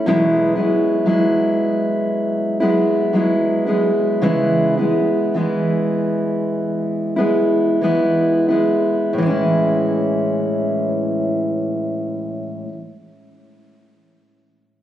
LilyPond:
\new Staff \with { instrumentName = "Steel-string acoustic guitar" } { \clef bass \time 4/4 \key a \major \tempo 4 = 49 <e, b, fis gis b e'>8 <fis gis b e'>8 <fis gis b e'>4. <fis gis b e'>8 <fis gis b e'>8 <fis gis b e'>8 | <cis e gis b e'>8 <gis b e'>8 <e gis b e'>4. <gis b e'>8 <e gis b e'>8 <gis b e'>8 | <a, e gis cis' e'>1 | }